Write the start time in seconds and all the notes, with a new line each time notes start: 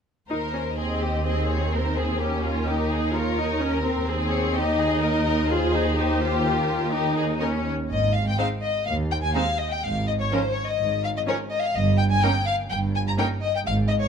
0.29 D#2 D#4 A#4 C5
0.54 C#4
0.78 C4 G#4 D#5
1.02 G4
1.25 C4 G#4 D#5
1.49 C#5
1.73 A#4 C5
1.96 G#4
2.19 C#4 G4 A#4
2.43 F4
2.66 D#4 G4 A#4
2.90 G#4
3.13 F4 A#4 C#5
3.37 D#4
3.60 C#4 A#4
3.84 C4
4.07 D#2 G#4 C5
4.32 C#5
4.55 D#4 G4 D#5
4.78 G#4
5.01 A#4 D#5
5.25 A#4
5.49 F4 G#4 C5
5.73 D#4
5.96 D#4 G4 C5
6.21 F4
6.45 A#4
6.92 D#4 G4
7.16 G#4
7.40 C#4 A#4 C#5
7.90 G#1 G#2 D#5
8.14 F5
8.27 G5
8.38 G#3 C4 D#4 C5 F5
8.62 D#5
8.87 D#2 F5
9.11 G5
9.24 G#5
9.35 G#3 C4 D#4 C5 F5
9.59 D#5
9.72 G5
9.83 G#1 G#2 F5
10.07 D#5
10.20 C#5
10.32 F3 C#4 A#4 C5
10.56 C#5
10.68 D#5
10.80 G#1 G#2
11.04 F5
11.16 D#5
11.28 F3 C#4 A#4 C#5
11.51 D#5
11.64 F5
11.75 G1 G2 D#5
11.98 G5
12.11 G#5
12.22 A#3 C#4 D#4 A#4 G5
12.47 F5
12.70 G1 G2 G5
12.94 G#5
13.07 A#5
13.18 A#3 C#4 D#4 A#4 G5
13.42 D#5
13.55 G5
13.65 G#1 G#2 F5
13.90 D#5
14.02 C#5